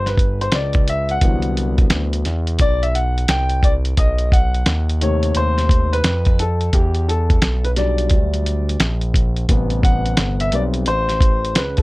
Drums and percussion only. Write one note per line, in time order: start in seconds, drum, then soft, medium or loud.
0.06 snare soft
0.06 closed hi-hat soft
0.18 kick medium
0.18 closed hi-hat medium
0.41 closed hi-hat medium
0.52 snare loud
0.52 closed hi-hat medium
0.73 kick medium
0.73 closed hi-hat soft
0.88 closed hi-hat medium
1.09 closed hi-hat soft
1.21 kick medium
1.21 closed hi-hat medium
1.42 closed hi-hat soft
1.57 closed hi-hat medium
1.78 kick medium
1.78 closed hi-hat soft
1.90 snare loud
1.90 closed hi-hat loud
2.13 closed hi-hat medium
2.25 snare soft
2.25 closed hi-hat medium
2.47 closed hi-hat medium
2.59 kick medium
2.59 closed hi-hat medium
2.83 closed hi-hat soft
2.95 closed hi-hat medium
3.18 closed hi-hat medium
3.28 snare loud
3.28 closed hi-hat loud
3.49 closed hi-hat soft
3.63 kick medium
3.63 closed hi-hat medium
3.85 closed hi-hat medium
3.97 kick medium
3.97 closed hi-hat medium
4.18 closed hi-hat soft
4.32 kick loud
4.32 closed hi-hat medium
4.54 closed hi-hat soft
4.66 snare loud
4.66 closed hi-hat loud
4.89 closed hi-hat medium
5.01 closed hi-hat medium
5.23 closed hi-hat medium
5.35 closed hi-hat medium
5.58 snare soft
5.58 closed hi-hat soft
5.69 kick loud
5.69 closed hi-hat medium
5.93 closed hi-hat medium
6.04 snare loud
6.04 closed hi-hat loud
6.25 kick medium
6.25 closed hi-hat soft
6.39 closed hi-hat medium
6.61 closed hi-hat soft
6.73 kick medium
6.73 closed hi-hat medium
6.95 closed hi-hat soft
7.09 closed hi-hat medium
7.30 kick medium
7.30 closed hi-hat soft
7.42 snare loud
7.42 closed hi-hat loud
7.65 closed hi-hat medium
7.76 snare soft
7.76 closed hi-hat medium
7.98 closed hi-hat medium
8.10 kick medium
8.10 closed hi-hat medium
8.34 closed hi-hat medium
8.46 closed hi-hat medium
8.69 closed hi-hat medium
8.80 snare loud
8.80 closed hi-hat loud
9.01 closed hi-hat soft
9.14 kick medium
9.14 closed hi-hat medium
9.36 closed hi-hat soft
9.49 kick loud
9.49 closed hi-hat medium
9.70 closed hi-hat soft
9.83 kick loud
9.83 closed hi-hat medium
10.06 closed hi-hat medium
10.17 snare loud
10.17 closed hi-hat loud
10.40 closed hi-hat medium
10.52 closed hi-hat medium
10.74 closed hi-hat medium
10.86 closed hi-hat medium
11.09 snare soft
11.09 closed hi-hat medium
11.21 kick loud
11.21 closed hi-hat medium
11.45 closed hi-hat medium
11.55 snare loud
11.55 closed hi-hat loud
11.77 kick medium
11.77 closed hi-hat soft